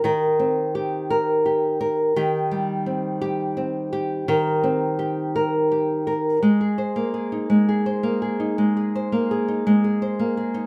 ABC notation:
X:1
M:6/8
L:1/16
Q:3/8=56
K:Ablyd
V:1 name="Nylon-string guitar"
[E,CGB]2 C2 G2 B2 G2 B2 | [E,G]2 G,2 C2 G2 C2 G2 | [E,B]2 C2 G2 B2 G2 B2 | A, A c B, A E A, A c B, A E |
A, A c B, A E A, A c B, A E |]